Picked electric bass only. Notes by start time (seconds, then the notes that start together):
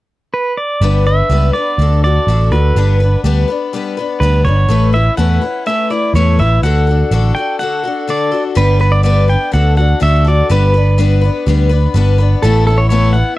0.81 G1
1.30 C#2
1.78 D2
2.27 A1
2.51 D2
2.76 G1
3.24 D2
4.21 D2
4.45 G1
4.69 A1
5.18 E2
6.14 E2
6.38 A1
6.62 D2
7.11 A1
8.57 G1
9.54 D2
10.02 D2
10.50 G1
11.47 D2
11.94 G1
12.43 A1